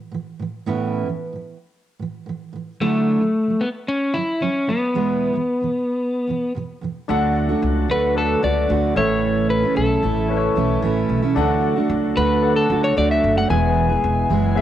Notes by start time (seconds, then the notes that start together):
0.11 A2 E3
0.39 A2 E3
0.66 A2 E3 B3 C#4 E4
1.06 A2 E3
1.32 A2 E3
1.99 A2 E3
2.26 A2 E3
2.53 A2 E3
2.80 D3 F#3 A3 D4 E4
3.20 D3 F#3
3.47 D3 F#3
3.61 B3
3.88 C#4
4.14 D3 F#3 E4
4.40 D3 F#3 C#4
4.67 D3 F#3 B3
4.94 E2 B2 E3 G#3 B3 E4
5.33 E2 B2 E3
5.60 E2 B2 E3
6.27 E2 B2 E3
6.55 E2 B2 E3
6.81 E2 B2 E3
7.08 D2 D3 F#3 A3 D4 F#4 A4 F#5
7.49 A3 D4 F#4
7.62 C#2
7.88 D2 D3 A3 D4 F#4 B4
8.15 D4 A4 B4
8.42 C#2 D3 A3 D4 F#4 D5
8.68 D2 D3 A3 D4 F#4
8.95 A1 A2 C#3 E3 A3 C#4 E4 A4 C#5 E5
9.50 B4
9.63 A3 C#4 E4
9.76 B1 A4
10.03 A1 E3 A3 C#4 E4
10.28 C#4 A4 B4
10.37 C#5
10.56 B1 E3 A3 C#4 E4
10.82 A1 E3 A3 C#4 E4
11.09 B1
11.22 A3 C#4 E4
11.35 D2 D3 F#3 A3 D4 F#4 A4 F#5
11.76 A3 D4 F#4
11.90 C#2
12.16 D2 D3 A3 D4 F#4 B4
12.41 D4 A4 F#5
12.56 A4
12.69 C#2 D3 A3 D4 F#4
12.84 C#5
12.96 D2 D3 A3 D4 F#4 D5
13.11 E5
13.24 F#1
13.36 A3 D4 F#4 F#5
13.48 E1 E2 B2 E3 G#3 B3 E4 G#4 E5 G#5
13.89 E3 G#3 B3 G#4
14.04 E1
14.30 F#1 E3 G#3 B3 G#4
14.56 B3 G#4 E5